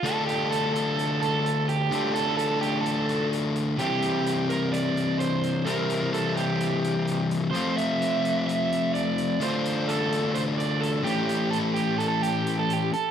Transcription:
<<
  \new Staff \with { instrumentName = "Overdriven electric guitar" } { \time 4/4 \key d \minor \tempo 4 = 128 a'8 g'8 a'8 a'4 a'4 g'8~ | g'8 a'8 a'8 g'8 a'4 r4 | g'4. bes'8 d''4 c''4 | bes'4 a'8 g'2 r8 |
c''8 e''4. e''4 d''4 | c''4 a'4 c''8 d''8 a'8 g'8~ | g'8 a'8 g'8 a'16 a'16 g'8. a'16 g'8 a'8 | }
  \new Staff \with { instrumentName = "Distorted electric guitar" } { \time 4/4 \key d \minor <d a d' f' a'>1 | <d a d' f' a'>1 | <c e g c' e'>1 | <c e g c' e'>1 |
<f a c' f'>1 | <d a d' f'>2.~ <d a d' f'>8 <a, e a cis' e'>8~ | <a, e a cis' e'>2.~ <a, e a cis' e'>8 r8 | }
  \new DrumStaff \with { instrumentName = "Drums" } \drummode { \time 4/4 hh8 hh8 hh8 hh8 hh8 hh8 hh8 hh8 | hh8 hh8 hh8 hh8 hh8 hh8 hh8 hh8 | hh8 hh8 hh8 hh8 hh8 hh8 hh8 hh8 | hh8 hh8 hh8 hh8 hh8 hh8 hh8 hh8 |
hh8 hh8 hh8 hh8 hh8 hh8 hh8 hh8 | hh8 hh8 hh8 hh8 hh8 hh8 hh8 hh8 | hh8 hh8 hh8 hh8 hh8 hh8 hh8 hh8 | }
>>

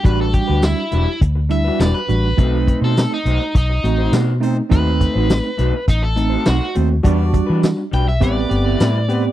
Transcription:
<<
  \new Staff \with { instrumentName = "Overdriven electric guitar" } { \time 4/4 \key e \minor \tempo 4 = 103 b'16 a'16 g'8 e'4 r8 e''8 d''16 b'8.~ | b'8. a'8 dis'8. dis'4 r4 | b'2 dis'16 a'8. fis'8 r8 | r4. g''16 e''16 d''2 | }
  \new Staff \with { instrumentName = "Clean electric guitar" } { \time 4/4 \key e \minor <g d' fis' b'>16 r8 <d' fis' b'>16 r8 <g d' fis' b'>16 r4 <d' fis' b'>16 <g d' fis' b'>16 r8. | <a dis' fis' c''>16 r8 <dis' fis' c''>16 r8 <a dis' fis' c''>16 r4 <dis' fis' c''>16 <a dis' fis' c''>16 r8. | <a dis' fis' c''>16 r8 <dis' fis' c''>16 r8 <a dis' fis' c''>16 r4 <dis' fis' c''>16 <a dis' fis' c''>16 r8. | <g d' fis' b'>16 r8 <d' fis' b'>16 r8 <g d' fis' b'>16 r16 <g c' e' b'>16 r8 <c' e' b'>16 <g c' e' b'>16 r8. | }
  \new Staff \with { instrumentName = "Horn section" } { \time 4/4 \key e \minor r1 | <a c' dis' a'>4 r2 r8 <c' dis' a' c''>16 r16 | <a c' dis' a'>4 r2 r8 <c' dis' a' c''>16 r16 | <d' fis' d''>4 r4 <a b g' b'>4 r8 <b c' g' b'>16 r16 | }
  \new Staff \with { instrumentName = "Tine electric piano" } { \time 4/4 \key e \minor <g d' fis'>4. r4 <g d' e'>8 r8 <g d' fis'>8 | <a c' dis'>4. r4 <a c' fis'>8 r8 <a c' dis'>8 | <a c' dis'>4. r4 <a c' dis'>8 r8 <a c' fis'>8 | <g d' fis'>4. r8 <b c' g'>8 <b c' g'>8 r8 <b c' g'>8 | }
  \new Staff \with { instrumentName = "Fingered electric bass" } { \clef bass \time 4/4 \key e \minor a,,8. d,8 r16 e,,16 r16 d,4 e,,16 r16 a,,8 | b,,8. b,8 r16 b,,16 r16 b,,8 a,,8 b,4 | dis,8. a,,8 r16 b,,16 r16 a,,4 b,,16 r16 dis,8 | e,8. e8 r16 b,,8 a,,8 g,,8 a,4 | }
  \new DrumStaff \with { instrumentName = "Drums" } \drummode { \time 4/4 <hh bd>8 <hh bd>8 <hh sn tamb>8 hh8 <hh bd>8 hh8 <hh sn tamb>8 hh8 | <hh bd>8 <hh bd>8 <hh sn tamb>8 hh8 <hh bd>8 hh8 <hh sn tamb>8 hh8 | <hh bd>8 <hh bd>8 <hh sn tamb>8 hh8 <hh bd>8 hh8 <hh sn tamb>8 hh8 | <hh bd>8 <hh bd>8 <hh sn tamb>8 hh8 <hh bd>8 hh8 <hh sn tamb>8 hh8 | }
>>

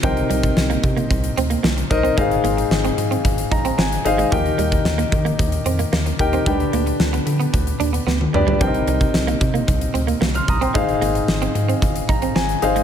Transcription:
<<
  \new Staff \with { instrumentName = "Grand piano" } { \time 4/4 \key c \minor \tempo 4 = 112 << { r1 | r2 r8 bes''8 aes''8 ees''8 | r1 | r1 |
r2. r16 <c''' f'''>16 <bes'' ees'''>16 <g'' c'''>16~ | <g'' c'''>16 r2 r16 bes''8 aes''8 f''8 | } \\ { <c ees' bes' c'' g''>4. r2 <ees' bes' c'' ees''>8 | <aes, ees' aes' c'' f''>4. r2 <ees' aes' c'' f''>8 | <ees ees' g' bes' g''>4. r2 <ees' g' bes' g''>8 | <d d' g' b' g''>4. r2 <d' g' b' d''>8 |
<c d' ees' bes' c'' g''>4. r2 r8 | <aes, ees' aes' c'' f''>4. r2 <ees' aes' c''>8 | } >> }
  \new Staff \with { instrumentName = "Clean electric guitar" } { \time 4/4 \key c \minor f16 r16 g16 r8 bes16 r16 bes16 r8 c'16 bes16 bes16 r8 c'16 | aes16 r16 bes16 r8 c'16 r16 c'16 r8 ees'16 c'16 c'16 r8 aes16 | f16 r16 g16 r8 bes16 r16 bes16 r8 c'16 bes16 bes16 r8 c'16 | g16 r16 bes16 r8 b16 r16 b16 r8 d'16 b16 b16 r8 g16 |
f16 r16 g16 r8 bes16 r16 bes16 r8 c'16 bes16 bes16 r8 c'16 | aes16 r16 bes16 r8 c'16 r16 c'16 r8 ees'16 c'16 c'16 r8 aes16 | }
  \new Staff \with { instrumentName = "Analog synth bass" } { \clef bass \time 4/4 \key c \minor c,8 c,8 c,8 c8 c,8 d,8 c,8 c,8 | aes,,8 aes,,8 aes,,8 aes,8 aes,,8 bes,,8 aes,,8 aes,,8 | ees,8 ees,8 ees,8 ees8 ees,8 f,8 ees,8 ees,8 | d,8 d,8 d,8 d8 d,8 ees,8 d,8 d,8 |
c,8 c,8 c,8 c8 c,8 d,8 c,8 c,8 | aes,,8 aes,,8 aes,,8 aes,8 aes,,8 bes,,8 aes,,8 aes,,8 | }
  \new DrumStaff \with { instrumentName = "Drums" } \drummode { \time 4/4 <hh bd>16 hh16 hh16 <hh bd>16 sn16 hh16 <hh bd>16 hh16 <hh bd>16 hh16 hh16 hh16 sn16 hh16 <hh bd>16 hh16 | <hh bd>16 hh16 hh16 hh16 sn16 hh16 hh16 hh16 <hh bd>16 hh16 <hh bd>16 hh16 sn16 hh16 hh16 hh16 | <hh bd>16 hh16 hh16 <hh bd>16 sn16 hh16 <hh bd>16 hh16 <hh bd>16 hh16 hh16 hh16 sn16 hh16 <hh bd>16 hh16 | <hh bd>16 hh16 hh16 hh16 sn16 hh16 hh16 hh16 <hh bd>16 hh16 hh16 hh16 sn16 tommh16 toml16 tomfh16 |
<hh bd>16 hh16 hh16 <hh bd>16 sn16 hh16 <hh bd>16 hh16 <hh bd>16 hh16 hh16 hh16 sn16 hh16 <hh bd>16 hh16 | <hh bd>16 hh16 hh16 hh16 sn16 hh16 hh16 hh16 <hh bd>16 hh16 <hh bd>16 hh16 sn16 hh16 hh16 hh16 | }
>>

